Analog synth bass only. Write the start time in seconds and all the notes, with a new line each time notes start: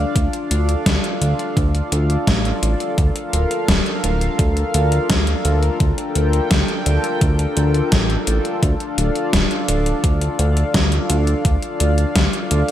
0.16 D2
0.51 D2
0.86 D2
1.21 D2
1.57 D2
1.92 D2
2.27 A1
2.63 A1
2.98 D2
3.33 D1
3.68 D1
4.04 D1
4.39 D2
4.74 D2
5.10 D2
5.45 D2
5.80 D2
6.15 D2
6.51 D2
6.86 D2
7.22 D2
7.57 D2
7.92 A1
8.27 A1
8.63 D2
8.98 D1
9.33 D1
9.69 D1
10.04 D2
10.39 D2
10.74 D2
11.10 D2
11.45 D2
11.81 D2
12.16 D2
12.51 D2